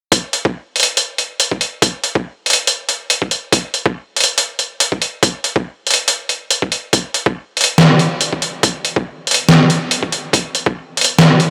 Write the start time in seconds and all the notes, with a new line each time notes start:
0.12 kick, closed hi-hat
0.33 closed hi-hat
0.45 kick
0.76 closed hi-hat
0.80 closed hi-hat
0.83 closed hi-hat
0.97 closed hi-hat
1.18 closed hi-hat
1.40 closed hi-hat
1.51 kick
1.61 closed hi-hat
1.82 kick, closed hi-hat
2.04 closed hi-hat
2.15 kick
2.46 closed hi-hat
2.50 closed hi-hat
2.53 closed hi-hat
2.67 closed hi-hat
2.89 closed hi-hat
3.10 closed hi-hat
3.22 kick
3.31 closed hi-hat
3.52 kick, closed hi-hat
3.74 closed hi-hat
3.86 kick
4.16 closed hi-hat
4.20 closed hi-hat
4.24 closed hi-hat
4.38 closed hi-hat
4.59 closed hi-hat
4.80 closed hi-hat
4.92 kick
5.02 closed hi-hat
5.23 kick, closed hi-hat
5.44 closed hi-hat
5.56 kick
5.87 closed hi-hat
5.91 closed hi-hat
5.94 closed hi-hat
6.08 closed hi-hat
6.29 closed hi-hat
6.51 closed hi-hat
6.62 kick
6.72 closed hi-hat
6.93 kick, closed hi-hat
7.14 closed hi-hat
7.26 kick
7.57 closed hi-hat
7.61 closed hi-hat
7.64 closed hi-hat
7.78 snare, closed hi-hat
7.99 closed hi-hat
8.21 closed hi-hat
8.33 kick
8.42 closed hi-hat
8.63 kick, closed hi-hat
8.85 closed hi-hat
8.96 kick
9.27 closed hi-hat
9.31 closed hi-hat
9.34 closed hi-hat
9.49 snare, closed hi-hat
9.70 closed hi-hat
9.91 closed hi-hat
10.03 kick
10.12 closed hi-hat
10.33 kick, closed hi-hat
10.55 closed hi-hat
10.66 kick
10.97 closed hi-hat
11.01 closed hi-hat
11.04 closed hi-hat
11.19 snare, closed hi-hat
11.40 closed hi-hat